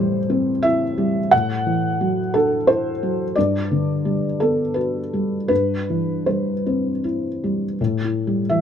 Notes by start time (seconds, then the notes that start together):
Already playing: A2 E3 G3 C5
0.30 C4
0.63 E4 E5
0.98 G3
1.31 A2 F#5
1.67 E3
2.01 F#3
2.34 D4 A4
2.67 E4 C5
3.03 F#3
3.35 G2 D5
3.71 D3
4.05 G3
4.40 B3 A4
4.74 F#4 B4
5.13 G3
5.48 G2 B4
5.90 E3
6.26 G3 C5
6.66 C4
7.04 E4
7.44 G3
7.81 A2
8.04 E4
8.27 G3
8.49 E3 E5